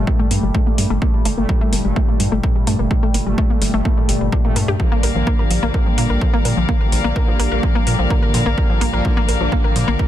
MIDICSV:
0, 0, Header, 1, 7, 480
1, 0, Start_track
1, 0, Key_signature, -2, "minor"
1, 0, Tempo, 472441
1, 1034, Time_signature, 4, 2, 24, 8
1, 10239, End_track
2, 0, Start_track
2, 0, Title_t, "String section"
2, 0, Program_c, 0, 48
2, 4874, Note_on_c, 0, 58, 71
2, 4874, Note_on_c, 0, 70, 67
2, 4874, Note_on_c, 0, 74, 68
2, 4874, Note_on_c, 0, 77, 82
2, 10239, Note_off_c, 0, 58, 0
2, 10239, Note_off_c, 0, 70, 0
2, 10239, Note_off_c, 0, 74, 0
2, 10239, Note_off_c, 0, 77, 0
2, 10239, End_track
3, 0, Start_track
3, 0, Title_t, "Synth arpeggio sound"
3, 0, Program_c, 1, 84
3, 75, Note_on_c, 1, 55, 77
3, 191, Note_off_c, 1, 55, 0
3, 197, Note_on_c, 1, 57, 99
3, 309, Note_off_c, 1, 57, 0
3, 315, Note_on_c, 1, 58, 74
3, 431, Note_off_c, 1, 58, 0
3, 437, Note_on_c, 1, 55, 77
3, 549, Note_off_c, 1, 55, 0
3, 555, Note_on_c, 1, 57, 96
3, 671, Note_off_c, 1, 57, 0
3, 677, Note_on_c, 1, 58, 78
3, 789, Note_off_c, 1, 58, 0
3, 794, Note_on_c, 1, 55, 76
3, 911, Note_off_c, 1, 55, 0
3, 917, Note_on_c, 1, 57, 97
3, 1029, Note_off_c, 1, 57, 0
3, 1035, Note_on_c, 1, 58, 81
3, 1151, Note_off_c, 1, 58, 0
3, 1157, Note_on_c, 1, 55, 75
3, 1269, Note_off_c, 1, 55, 0
3, 1274, Note_on_c, 1, 57, 99
3, 1391, Note_off_c, 1, 57, 0
3, 1397, Note_on_c, 1, 58, 75
3, 1508, Note_off_c, 1, 58, 0
3, 1514, Note_on_c, 1, 55, 82
3, 1631, Note_off_c, 1, 55, 0
3, 1637, Note_on_c, 1, 57, 99
3, 1748, Note_off_c, 1, 57, 0
3, 1754, Note_on_c, 1, 58, 74
3, 1871, Note_off_c, 1, 58, 0
3, 1876, Note_on_c, 1, 55, 75
3, 1988, Note_off_c, 1, 55, 0
3, 1994, Note_on_c, 1, 57, 94
3, 2111, Note_off_c, 1, 57, 0
3, 2117, Note_on_c, 1, 58, 76
3, 2228, Note_off_c, 1, 58, 0
3, 2234, Note_on_c, 1, 55, 78
3, 2350, Note_off_c, 1, 55, 0
3, 2356, Note_on_c, 1, 57, 97
3, 2468, Note_off_c, 1, 57, 0
3, 2474, Note_on_c, 1, 58, 82
3, 2591, Note_off_c, 1, 58, 0
3, 2597, Note_on_c, 1, 55, 75
3, 2708, Note_off_c, 1, 55, 0
3, 2714, Note_on_c, 1, 57, 101
3, 2831, Note_off_c, 1, 57, 0
3, 2837, Note_on_c, 1, 58, 77
3, 2949, Note_off_c, 1, 58, 0
3, 2954, Note_on_c, 1, 55, 80
3, 3071, Note_off_c, 1, 55, 0
3, 3077, Note_on_c, 1, 57, 98
3, 3189, Note_off_c, 1, 57, 0
3, 3195, Note_on_c, 1, 58, 75
3, 3311, Note_off_c, 1, 58, 0
3, 3317, Note_on_c, 1, 55, 76
3, 3429, Note_off_c, 1, 55, 0
3, 3435, Note_on_c, 1, 57, 101
3, 3551, Note_off_c, 1, 57, 0
3, 3557, Note_on_c, 1, 58, 77
3, 3669, Note_off_c, 1, 58, 0
3, 3675, Note_on_c, 1, 55, 75
3, 3791, Note_off_c, 1, 55, 0
3, 3797, Note_on_c, 1, 57, 97
3, 3909, Note_off_c, 1, 57, 0
3, 3915, Note_on_c, 1, 58, 77
3, 4031, Note_off_c, 1, 58, 0
3, 4037, Note_on_c, 1, 55, 73
3, 4143, Note_off_c, 1, 55, 0
3, 4155, Note_on_c, 1, 55, 75
3, 4234, Note_off_c, 1, 55, 0
3, 4277, Note_on_c, 1, 55, 73
3, 4322, Note_off_c, 1, 55, 0
3, 4395, Note_on_c, 1, 62, 80
3, 4511, Note_off_c, 1, 62, 0
3, 4517, Note_on_c, 1, 58, 74
3, 4562, Note_off_c, 1, 58, 0
3, 4634, Note_on_c, 1, 70, 77
3, 4714, Note_off_c, 1, 70, 0
3, 4758, Note_on_c, 1, 67, 102
3, 4833, Note_off_c, 1, 67, 0
3, 4874, Note_on_c, 1, 53, 82
3, 4991, Note_off_c, 1, 53, 0
3, 4996, Note_on_c, 1, 58, 103
3, 5108, Note_off_c, 1, 58, 0
3, 5114, Note_on_c, 1, 70, 75
3, 5193, Note_off_c, 1, 70, 0
3, 5237, Note_on_c, 1, 53, 73
3, 5348, Note_off_c, 1, 53, 0
3, 5355, Note_on_c, 1, 58, 106
3, 5471, Note_off_c, 1, 58, 0
3, 5477, Note_on_c, 1, 70, 75
3, 5553, Note_off_c, 1, 70, 0
3, 5594, Note_on_c, 1, 53, 76
3, 5711, Note_off_c, 1, 53, 0
3, 5717, Note_on_c, 1, 58, 104
3, 5829, Note_off_c, 1, 58, 0
3, 5834, Note_on_c, 1, 70, 77
3, 5913, Note_off_c, 1, 70, 0
3, 5957, Note_on_c, 1, 53, 77
3, 6068, Note_off_c, 1, 53, 0
3, 6074, Note_on_c, 1, 58, 100
3, 6190, Note_off_c, 1, 58, 0
3, 6196, Note_on_c, 1, 70, 74
3, 6273, Note_off_c, 1, 70, 0
3, 6314, Note_on_c, 1, 53, 79
3, 6431, Note_off_c, 1, 53, 0
3, 6437, Note_on_c, 1, 58, 98
3, 6548, Note_off_c, 1, 58, 0
3, 6554, Note_on_c, 1, 70, 76
3, 6633, Note_off_c, 1, 70, 0
3, 6676, Note_on_c, 1, 53, 75
3, 6788, Note_off_c, 1, 53, 0
3, 6793, Note_on_c, 1, 58, 96
3, 6910, Note_off_c, 1, 58, 0
3, 6916, Note_on_c, 1, 70, 75
3, 6992, Note_off_c, 1, 70, 0
3, 7034, Note_on_c, 1, 53, 75
3, 7151, Note_off_c, 1, 53, 0
3, 7156, Note_on_c, 1, 58, 99
3, 7268, Note_off_c, 1, 58, 0
3, 7274, Note_on_c, 1, 70, 83
3, 7353, Note_off_c, 1, 70, 0
3, 7397, Note_on_c, 1, 53, 73
3, 7509, Note_off_c, 1, 53, 0
3, 7514, Note_on_c, 1, 58, 103
3, 7631, Note_off_c, 1, 58, 0
3, 7637, Note_on_c, 1, 70, 80
3, 7713, Note_off_c, 1, 70, 0
3, 7754, Note_on_c, 1, 53, 79
3, 7871, Note_off_c, 1, 53, 0
3, 7877, Note_on_c, 1, 58, 98
3, 7988, Note_off_c, 1, 58, 0
3, 7994, Note_on_c, 1, 70, 73
3, 8074, Note_off_c, 1, 70, 0
3, 8117, Note_on_c, 1, 53, 77
3, 8229, Note_off_c, 1, 53, 0
3, 8234, Note_on_c, 1, 58, 97
3, 8350, Note_off_c, 1, 58, 0
3, 8356, Note_on_c, 1, 70, 75
3, 8432, Note_off_c, 1, 70, 0
3, 8474, Note_on_c, 1, 53, 77
3, 8591, Note_off_c, 1, 53, 0
3, 8596, Note_on_c, 1, 58, 96
3, 8708, Note_off_c, 1, 58, 0
3, 8714, Note_on_c, 1, 70, 82
3, 8793, Note_off_c, 1, 70, 0
3, 8836, Note_on_c, 1, 53, 77
3, 8948, Note_off_c, 1, 53, 0
3, 8953, Note_on_c, 1, 58, 106
3, 9070, Note_off_c, 1, 58, 0
3, 9077, Note_on_c, 1, 70, 75
3, 9153, Note_off_c, 1, 70, 0
3, 9194, Note_on_c, 1, 53, 85
3, 9311, Note_off_c, 1, 53, 0
3, 9316, Note_on_c, 1, 58, 102
3, 9428, Note_off_c, 1, 58, 0
3, 9434, Note_on_c, 1, 70, 75
3, 9513, Note_off_c, 1, 70, 0
3, 9556, Note_on_c, 1, 53, 76
3, 9668, Note_off_c, 1, 53, 0
3, 9674, Note_on_c, 1, 58, 97
3, 9791, Note_off_c, 1, 58, 0
3, 9796, Note_on_c, 1, 70, 75
3, 9872, Note_off_c, 1, 70, 0
3, 9914, Note_on_c, 1, 53, 75
3, 10030, Note_off_c, 1, 53, 0
3, 10036, Note_on_c, 1, 58, 102
3, 10148, Note_off_c, 1, 58, 0
3, 10153, Note_on_c, 1, 70, 83
3, 10233, Note_off_c, 1, 70, 0
3, 10239, End_track
4, 0, Start_track
4, 0, Title_t, "Analog polysynth"
4, 0, Program_c, 2, 90
4, 0, Note_on_c, 2, 46, 88
4, 0, Note_on_c, 2, 55, 81
4, 0, Note_on_c, 2, 57, 100
4, 1006, Note_off_c, 2, 46, 0
4, 1006, Note_off_c, 2, 55, 0
4, 1006, Note_off_c, 2, 57, 0
4, 1035, Note_on_c, 2, 46, 70
4, 1035, Note_on_c, 2, 55, 66
4, 1035, Note_on_c, 2, 57, 81
4, 1368, Note_off_c, 2, 46, 0
4, 1368, Note_off_c, 2, 55, 0
4, 1368, Note_off_c, 2, 57, 0
4, 1397, Note_on_c, 2, 46, 91
4, 1397, Note_on_c, 2, 55, 81
4, 1397, Note_on_c, 2, 57, 97
4, 1847, Note_off_c, 2, 46, 0
4, 1847, Note_off_c, 2, 55, 0
4, 1847, Note_off_c, 2, 57, 0
4, 1877, Note_on_c, 2, 46, 89
4, 1877, Note_on_c, 2, 55, 79
4, 1877, Note_on_c, 2, 57, 98
4, 2926, Note_off_c, 2, 46, 0
4, 2926, Note_off_c, 2, 55, 0
4, 2926, Note_off_c, 2, 57, 0
4, 2955, Note_on_c, 2, 46, 74
4, 2955, Note_on_c, 2, 55, 66
4, 2955, Note_on_c, 2, 57, 79
4, 3288, Note_off_c, 2, 46, 0
4, 3288, Note_off_c, 2, 55, 0
4, 3288, Note_off_c, 2, 57, 0
4, 3317, Note_on_c, 2, 46, 89
4, 3317, Note_on_c, 2, 55, 83
4, 3317, Note_on_c, 2, 57, 102
4, 3767, Note_off_c, 2, 46, 0
4, 3767, Note_off_c, 2, 57, 0
4, 3768, Note_off_c, 2, 55, 0
4, 3797, Note_on_c, 2, 46, 89
4, 3797, Note_on_c, 2, 55, 83
4, 3797, Note_on_c, 2, 57, 101
4, 4492, Note_off_c, 2, 46, 0
4, 4492, Note_off_c, 2, 55, 0
4, 4492, Note_off_c, 2, 57, 0
4, 4517, Note_on_c, 2, 46, 95
4, 4517, Note_on_c, 2, 55, 92
4, 4517, Note_on_c, 2, 57, 107
4, 4846, Note_off_c, 2, 46, 0
4, 4846, Note_off_c, 2, 55, 0
4, 4846, Note_off_c, 2, 57, 0
4, 4875, Note_on_c, 2, 50, 73
4, 4875, Note_on_c, 2, 53, 65
4, 4875, Note_on_c, 2, 58, 79
4, 5208, Note_off_c, 2, 50, 0
4, 5208, Note_off_c, 2, 53, 0
4, 5208, Note_off_c, 2, 58, 0
4, 5237, Note_on_c, 2, 50, 91
4, 5237, Note_on_c, 2, 53, 82
4, 5237, Note_on_c, 2, 58, 100
4, 5687, Note_off_c, 2, 50, 0
4, 5687, Note_off_c, 2, 53, 0
4, 5687, Note_off_c, 2, 58, 0
4, 5717, Note_on_c, 2, 50, 89
4, 5717, Note_on_c, 2, 53, 80
4, 5717, Note_on_c, 2, 58, 101
4, 6766, Note_off_c, 2, 50, 0
4, 6766, Note_off_c, 2, 53, 0
4, 6766, Note_off_c, 2, 58, 0
4, 6794, Note_on_c, 2, 50, 73
4, 6794, Note_on_c, 2, 53, 65
4, 6794, Note_on_c, 2, 58, 82
4, 7127, Note_off_c, 2, 50, 0
4, 7127, Note_off_c, 2, 53, 0
4, 7127, Note_off_c, 2, 58, 0
4, 7157, Note_on_c, 2, 50, 90
4, 7157, Note_on_c, 2, 53, 81
4, 7157, Note_on_c, 2, 58, 99
4, 7607, Note_off_c, 2, 50, 0
4, 7607, Note_off_c, 2, 53, 0
4, 7607, Note_off_c, 2, 58, 0
4, 7637, Note_on_c, 2, 50, 87
4, 7637, Note_on_c, 2, 53, 80
4, 7637, Note_on_c, 2, 58, 98
4, 8686, Note_off_c, 2, 50, 0
4, 8686, Note_off_c, 2, 53, 0
4, 8686, Note_off_c, 2, 58, 0
4, 8714, Note_on_c, 2, 50, 74
4, 8714, Note_on_c, 2, 53, 67
4, 8714, Note_on_c, 2, 58, 80
4, 9047, Note_off_c, 2, 50, 0
4, 9047, Note_off_c, 2, 53, 0
4, 9047, Note_off_c, 2, 58, 0
4, 9077, Note_on_c, 2, 50, 87
4, 9077, Note_on_c, 2, 53, 82
4, 9077, Note_on_c, 2, 58, 99
4, 9527, Note_off_c, 2, 50, 0
4, 9527, Note_off_c, 2, 53, 0
4, 9527, Note_off_c, 2, 58, 0
4, 9557, Note_on_c, 2, 50, 90
4, 9557, Note_on_c, 2, 53, 80
4, 9557, Note_on_c, 2, 58, 102
4, 10239, Note_off_c, 2, 50, 0
4, 10239, Note_off_c, 2, 53, 0
4, 10239, Note_off_c, 2, 58, 0
4, 10239, End_track
5, 0, Start_track
5, 0, Title_t, "Synth drone"
5, 0, Program_c, 3, 95
5, 0, Note_on_c, 3, 43, 73
5, 0, Note_on_c, 3, 55, 77
5, 10239, Note_off_c, 3, 43, 0
5, 10239, Note_off_c, 3, 55, 0
5, 10239, End_track
6, 0, Start_track
6, 0, Title_t, "Analog synth bass"
6, 0, Program_c, 4, 38
6, 314, Note_on_c, 4, 43, 91
6, 401, Note_off_c, 4, 43, 0
6, 437, Note_on_c, 4, 31, 81
6, 520, Note_off_c, 4, 31, 0
6, 795, Note_on_c, 4, 43, 94
6, 881, Note_off_c, 4, 43, 0
6, 917, Note_on_c, 4, 31, 83
6, 1000, Note_off_c, 4, 31, 0
6, 1274, Note_on_c, 4, 31, 90
6, 1361, Note_off_c, 4, 31, 0
6, 1397, Note_on_c, 4, 31, 83
6, 1479, Note_off_c, 4, 31, 0
6, 1754, Note_on_c, 4, 31, 92
6, 1840, Note_off_c, 4, 31, 0
6, 1877, Note_on_c, 4, 31, 81
6, 1959, Note_off_c, 4, 31, 0
6, 2234, Note_on_c, 4, 43, 91
6, 2321, Note_off_c, 4, 43, 0
6, 2357, Note_on_c, 4, 31, 78
6, 2440, Note_off_c, 4, 31, 0
6, 2714, Note_on_c, 4, 43, 95
6, 2800, Note_off_c, 4, 43, 0
6, 2837, Note_on_c, 4, 31, 84
6, 2919, Note_off_c, 4, 31, 0
6, 3194, Note_on_c, 4, 31, 90
6, 3280, Note_off_c, 4, 31, 0
6, 3316, Note_on_c, 4, 31, 79
6, 3399, Note_off_c, 4, 31, 0
6, 3674, Note_on_c, 4, 31, 91
6, 3760, Note_off_c, 4, 31, 0
6, 3796, Note_on_c, 4, 31, 80
6, 3879, Note_off_c, 4, 31, 0
6, 4154, Note_on_c, 4, 31, 92
6, 4241, Note_off_c, 4, 31, 0
6, 4276, Note_on_c, 4, 31, 77
6, 4359, Note_off_c, 4, 31, 0
6, 4634, Note_on_c, 4, 43, 92
6, 4721, Note_off_c, 4, 43, 0
6, 4757, Note_on_c, 4, 43, 81
6, 4840, Note_off_c, 4, 43, 0
6, 5114, Note_on_c, 4, 34, 91
6, 5200, Note_off_c, 4, 34, 0
6, 5237, Note_on_c, 4, 34, 82
6, 5320, Note_off_c, 4, 34, 0
6, 5594, Note_on_c, 4, 34, 92
6, 5680, Note_off_c, 4, 34, 0
6, 5717, Note_on_c, 4, 34, 78
6, 5800, Note_off_c, 4, 34, 0
6, 6074, Note_on_c, 4, 46, 92
6, 6161, Note_off_c, 4, 46, 0
6, 6196, Note_on_c, 4, 34, 78
6, 6279, Note_off_c, 4, 34, 0
6, 6554, Note_on_c, 4, 46, 92
6, 6641, Note_off_c, 4, 46, 0
6, 6677, Note_on_c, 4, 34, 82
6, 6760, Note_off_c, 4, 34, 0
6, 7035, Note_on_c, 4, 34, 93
6, 7121, Note_off_c, 4, 34, 0
6, 7157, Note_on_c, 4, 34, 79
6, 7240, Note_off_c, 4, 34, 0
6, 7515, Note_on_c, 4, 34, 94
6, 7601, Note_off_c, 4, 34, 0
6, 7637, Note_on_c, 4, 34, 77
6, 7720, Note_off_c, 4, 34, 0
6, 7995, Note_on_c, 4, 46, 95
6, 8081, Note_off_c, 4, 46, 0
6, 8118, Note_on_c, 4, 34, 77
6, 8200, Note_off_c, 4, 34, 0
6, 8474, Note_on_c, 4, 46, 97
6, 8561, Note_off_c, 4, 46, 0
6, 8598, Note_on_c, 4, 34, 84
6, 8680, Note_off_c, 4, 34, 0
6, 8955, Note_on_c, 4, 34, 94
6, 9041, Note_off_c, 4, 34, 0
6, 9078, Note_on_c, 4, 34, 81
6, 9160, Note_off_c, 4, 34, 0
6, 9435, Note_on_c, 4, 34, 98
6, 9521, Note_off_c, 4, 34, 0
6, 9558, Note_on_c, 4, 34, 82
6, 9640, Note_off_c, 4, 34, 0
6, 9914, Note_on_c, 4, 46, 91
6, 10001, Note_off_c, 4, 46, 0
6, 10037, Note_on_c, 4, 34, 81
6, 10120, Note_off_c, 4, 34, 0
6, 10239, End_track
7, 0, Start_track
7, 0, Title_t, "Drums"
7, 74, Note_on_c, 9, 36, 121
7, 176, Note_off_c, 9, 36, 0
7, 314, Note_on_c, 9, 46, 104
7, 415, Note_off_c, 9, 46, 0
7, 554, Note_on_c, 9, 36, 116
7, 656, Note_off_c, 9, 36, 0
7, 794, Note_on_c, 9, 46, 105
7, 896, Note_off_c, 9, 46, 0
7, 1034, Note_on_c, 9, 36, 122
7, 1136, Note_off_c, 9, 36, 0
7, 1274, Note_on_c, 9, 46, 108
7, 1376, Note_off_c, 9, 46, 0
7, 1514, Note_on_c, 9, 36, 121
7, 1616, Note_off_c, 9, 36, 0
7, 1754, Note_on_c, 9, 46, 109
7, 1855, Note_off_c, 9, 46, 0
7, 1994, Note_on_c, 9, 36, 121
7, 2096, Note_off_c, 9, 36, 0
7, 2234, Note_on_c, 9, 46, 107
7, 2336, Note_off_c, 9, 46, 0
7, 2474, Note_on_c, 9, 36, 118
7, 2576, Note_off_c, 9, 36, 0
7, 2714, Note_on_c, 9, 46, 105
7, 2816, Note_off_c, 9, 46, 0
7, 2954, Note_on_c, 9, 36, 123
7, 3055, Note_off_c, 9, 36, 0
7, 3194, Note_on_c, 9, 46, 106
7, 3295, Note_off_c, 9, 46, 0
7, 3434, Note_on_c, 9, 36, 121
7, 3535, Note_off_c, 9, 36, 0
7, 3674, Note_on_c, 9, 46, 109
7, 3775, Note_off_c, 9, 46, 0
7, 3914, Note_on_c, 9, 36, 120
7, 4015, Note_off_c, 9, 36, 0
7, 4154, Note_on_c, 9, 46, 105
7, 4255, Note_off_c, 9, 46, 0
7, 4394, Note_on_c, 9, 36, 116
7, 4495, Note_off_c, 9, 36, 0
7, 4634, Note_on_c, 9, 46, 104
7, 4735, Note_off_c, 9, 46, 0
7, 4874, Note_on_c, 9, 36, 117
7, 4975, Note_off_c, 9, 36, 0
7, 5114, Note_on_c, 9, 46, 104
7, 5215, Note_off_c, 9, 46, 0
7, 5354, Note_on_c, 9, 36, 114
7, 5455, Note_off_c, 9, 36, 0
7, 5594, Note_on_c, 9, 46, 105
7, 5695, Note_off_c, 9, 46, 0
7, 5834, Note_on_c, 9, 36, 122
7, 5935, Note_off_c, 9, 36, 0
7, 6074, Note_on_c, 9, 46, 106
7, 6176, Note_off_c, 9, 46, 0
7, 6314, Note_on_c, 9, 36, 109
7, 6416, Note_off_c, 9, 36, 0
7, 6554, Note_on_c, 9, 46, 99
7, 6656, Note_off_c, 9, 46, 0
7, 6794, Note_on_c, 9, 36, 113
7, 6896, Note_off_c, 9, 36, 0
7, 7034, Note_on_c, 9, 46, 97
7, 7136, Note_off_c, 9, 46, 0
7, 7274, Note_on_c, 9, 36, 108
7, 7376, Note_off_c, 9, 36, 0
7, 7514, Note_on_c, 9, 46, 99
7, 7616, Note_off_c, 9, 46, 0
7, 7754, Note_on_c, 9, 36, 113
7, 7856, Note_off_c, 9, 36, 0
7, 7994, Note_on_c, 9, 46, 101
7, 8095, Note_off_c, 9, 46, 0
7, 8234, Note_on_c, 9, 36, 106
7, 8336, Note_off_c, 9, 36, 0
7, 8474, Note_on_c, 9, 46, 100
7, 8576, Note_off_c, 9, 46, 0
7, 8714, Note_on_c, 9, 36, 111
7, 8816, Note_off_c, 9, 36, 0
7, 8954, Note_on_c, 9, 46, 99
7, 9056, Note_off_c, 9, 46, 0
7, 9194, Note_on_c, 9, 36, 110
7, 9296, Note_off_c, 9, 36, 0
7, 9434, Note_on_c, 9, 46, 102
7, 9536, Note_off_c, 9, 46, 0
7, 9674, Note_on_c, 9, 36, 116
7, 9776, Note_off_c, 9, 36, 0
7, 9914, Note_on_c, 9, 46, 98
7, 10016, Note_off_c, 9, 46, 0
7, 10154, Note_on_c, 9, 36, 107
7, 10239, Note_off_c, 9, 36, 0
7, 10239, End_track
0, 0, End_of_file